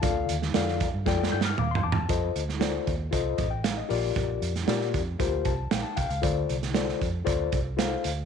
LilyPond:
<<
  \new Staff \with { instrumentName = "Reed electric piano" } { \time 4/4 \key f \mixolydian \tempo 4 = 116 << { a''16 r2 r16 g'''16 f'''16 <f'' d'''>16 c'''16 <a'' d'''>16 a''16~ | a''16 r2 r16 ees''16 g''16 f''16 ees''8 r16 | r2 r8 a''8 <f'' g''>16 a''16 <f'' g''>16 f''16~ | f''16 r2. r8. | } \\ { <f' a' d'' f''>8 r8 <f' a' d'' f''>8 r8 <f' a' d'' g''>8 r4. | <f' a' c'' ees''>8 r8 <f' a' c'' d''>8 r8 <f' a' c'' ees''>8 r4 <f' g' bes' d''>8~ | <f' g' bes' d''>8 r8 <f' g' bes' d''>8 r8 <f' g' bes' c''>8 r4. | <f' a' c'' d''>8 r8 <f' a' c'' d''>8 r8 <f' a' c'' d''>8 r8 <f' a' c'' f''>8 r8 | } >> }
  \new Staff \with { instrumentName = "Reed electric piano" } { \clef bass \time 4/4 \key f \mixolydian d4. r2 r8 | r2. r8 bes,8~ | bes,4 r2. | d4. r2 r8 | }
  \new Staff \with { instrumentName = "Fingered electric bass" } { \clef bass \time 4/4 \key f \mixolydian d,8 ees,8 f,8. g,16 f,8 g,8 ees,8 e,8 | f,8 d,4 ees,8 c,8 a,,4 bes,,8 | bes,,8 f,8 bes,8 f,8 d,8 c,8 bes,,16 r16 c,16 des,16 | d,8 c,4 f,8 d,8 c,4 d,8 | }
  \new DrumStaff \with { instrumentName = "Drums" } \drummode { \time 4/4 <hh bd>8 hh16 sn16 <hh sn>16 sn16 <hh bd>8 \tuplet 3/2 { <bd sn>8 sn8 sn8 toml8 tomfh8 tomfh8 } | <hh bd>8 hh16 sn16 <hh sn>8 <hh bd>8 <hh bd>8 <hh bd>8 <hh sn>8 hho8 | <hh bd>8 hh16 <hh sn>16 <hh sn>16 sn16 <hh bd>8 <hh bd>8 <hh bd>8 <hh sn>8 <hh bd>16 hh16 | <hh bd>8 hh16 <hh sn>16 <hh sn>16 sn16 <hh bd>8 <hh bd>8 <hh bd>8 <hh sn>8 hh8 | }
>>